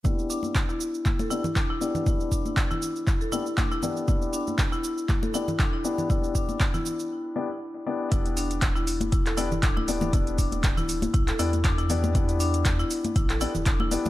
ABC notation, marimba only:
X:1
M:4/4
L:1/16
Q:"Swing 16ths" 1/4=119
K:Em
V:1 name="Marimba"
E z D z2 E z2 E A E z D E z2 | E z D z2 E z2 E A E z D E z2 | E z D z2 E z2 E A E z D E z2 | E z D z2 E z8 z2 |
E z D z2 E z2 E A E z D E z2 | E z D z2 E z2 E A E z D E z2 | E z D z2 E z2 E A E z D E z2 |]